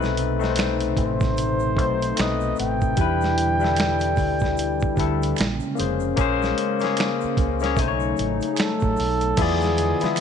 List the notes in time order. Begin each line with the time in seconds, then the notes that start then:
Already playing: B1 B2 C3 A3 C4 D#4 B4
0.02 snare, shaker
0.17 closed hi-hat, shaker
0.39 A3 C4 D#4, shaker
0.44 B4, snare
0.50 C5
0.56 finger snap, snare, closed hi-hat, shaker
0.60 finger snap
0.80 closed hi-hat, shaker
0.97 A1 C5, kick, closed hi-hat, shaker
1.20 kick, snare, shaker
1.37 closed hi-hat, shaker
1.59 shaker
1.76 B1 A3 C4 D#4, kick, closed hi-hat
1.80 C5
2.02 closed hi-hat, shaker
2.16 B1 A3 C4 D#4, finger snap, snare, closed hi-hat, shaker
2.20 B4 D#5, finger snap
2.41 shaker
2.56 A1, closed hi-hat, shaker
2.60 G5
2.81 kick, shaker
2.97 E2 D3 G3 D4 E4, kick, closed hi-hat, shaker
3.01 B4
3.21 snare, shaker
3.38 closed hi-hat, shaker
3.60 G3 D4 E4, shaker
3.64 A4, snare
3.76 finger snap, snare, closed hi-hat, shaker
3.80 finger snap
4.00 closed hi-hat, shaker
4.16 D2, kick, open hi-hat, shaker
4.39 kick, shaker
4.44 snare
4.57 closed hi-hat, shaker
4.80 kick, shaker
4.96 D2 G3 D4 E4, kick, closed hi-hat, shaker
5.00 A4
5.22 closed hi-hat, shaker
5.37 A#1 C#3 G#3 A#3 C#4, finger snap, closed hi-hat, shaker
5.41 finger snap, snare
5.60 shaker
5.75 A#3 C#4 G#4, shaker
5.80 F1 C5, closed hi-hat
6.00 shaker
6.16 A#1 C#3 G#3 A#3 C#4 G#4, kick, closed hi-hat, shaker
6.21 C5
6.42 snare, shaker
6.58 closed hi-hat
6.80 A#3 C#4 G#4, closed hi-hat, shaker
6.85 C#5, snare
6.97 finger snap, snare, closed hi-hat, shaker
7.01 finger snap
7.21 muted fingered electric bass stroke, shaker
7.37 C#2, kick, closed hi-hat, shaker
7.60 A#3 C#4, closed hi-hat, shaker
7.64 G#4 C#5, snare
7.76 B1 C#3 F#3 A3 D#4 G#5, kick, closed hi-hat, shaker
7.81 C5
7.88 C#5
8.00 shaker
8.17 A1, closed hi-hat, shaker
8.41 closed hi-hat, shaker
8.53 G#4, finger snap, closed hi-hat, shaker
8.60 A4, finger snap, snare
8.80 A1, kick, shaker
8.96 B1, open hi-hat, shaker
9.21 closed hi-hat, shaker
9.37 E2 D3 E3 F3 G#3 B3 E4 F4 G#4, kick, closed hi-hat, crash, shaker
9.42 G#4 D5
9.61 snare, shaker
9.77 closed hi-hat, shaker
10.00 B3 E4 F4 G#4, muted fingered electric bass stroke, snare, closed hi-hat, shaker
10.05 E5
10.16 finger snap, closed hi-hat, shaker